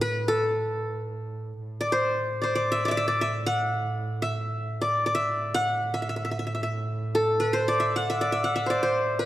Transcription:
Already playing: double bass A2
0.01 qanun B4
0.28 qanun A4
1.61 double bass A2
1.81 qanun D5
1.92 qanun C5
2.42 qanun C5 D5
2.55 qanun D5
2.72 qanun E5
2.85 qanun D5 E5
2.91 qanun D5
2.97 qanun E5
3.08 qanun D5
3.21 qanun E5
3.46 qanun F#5
4.22 qanun E5
4.81 qanun D5
5.06 qanun D5
5.15 qanun E5
5.24 double bass A2
5.54 qanun F#5
5.94 qanun E5
6.02 qanun E5
6.09 qanun E5
6.16 qanun E5
6.25 qanun E5
6.31 qanun E5
6.39 qanun E5
6.47 qanun E5
6.55 qanun E5
6.63 qanun E5
7.15 qanun A4
7.40 qanun B4
7.53 qanun C5
7.68 qanun D5
7.80 qanun E5
7.96 qanun F#5
8.10 qanun E5
8.21 qanun D5
8.32 qanun E5
8.44 qanun F#5
8.56 qanun E5
8.66 qanun C5 D5
8.83 qanun C5
8.87 double bass A2
9.19 qanun B4

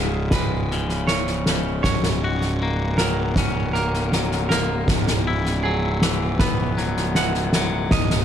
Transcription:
Already playing: picked electric bass C#1, clean electric guitar C#2 G#2 C#3 E4 G#4
0.31 clean electric guitar G#3 B4, kick, snare
0.71 clean electric guitar C#3, snare
0.89 snare
1.07 clean electric guitar G#2 C#5, snare
1.27 snare
1.46 clean electric guitar C#3, snare
1.83 picked electric bass C#1, clean electric guitar C#5, kick, snare
1.87 clean electric guitar F#2
2.03 snare
2.24 clean electric guitar F#4
2.41 snare
2.63 clean electric guitar A#3
2.98 clean electric guitar F#3 A#4, snare
3.36 clean electric guitar C#4, kick, snare
3.73 clean electric guitar A#3 A#4, snare
3.94 snare
4.12 clean electric guitar F#3, snare
4.31 snare
4.49 clean electric guitar A#3 A#4, snare
4.88 picked electric bass C#1, clean electric guitar E2, kick, snare
5.07 snare
5.27 clean electric guitar E4
5.45 snare
5.63 clean electric guitar F#3 G#4
6.02 clean electric guitar E3, snare
6.39 clean electric guitar B3 B4, kick, snare
6.77 clean electric guitar F#3, snare
6.97 snare
7.15 clean electric guitar E3 F#5, snare
7.34 snare
7.53 clean electric guitar F#3, snare
7.91 picked electric bass C#1, clean electric guitar D#2 D#5, kick, snare
8.10 snare

